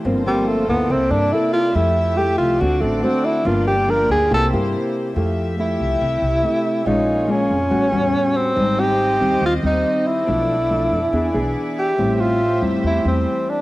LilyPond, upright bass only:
\new Staff \with { instrumentName = "Upright bass" } { \clef bass \time 4/4 \key f \major \tempo 4 = 141 g,,4. d,8 c,8 g,8 r4 | f,4. c,8 d,8 a,,8 r4 | g,,4. d,8 c,8 g,8 r4 | f,4. c,8 c,8 c,8 r4 |
bes,,4. f,8 a,,8 e,8 r4 | aes,,4. ees,8 ees,8 ees,8 r4 | b,,4. f,8 e,8 b,,8 r4 | a,,4. e,8 e,8 e,8 r4 | }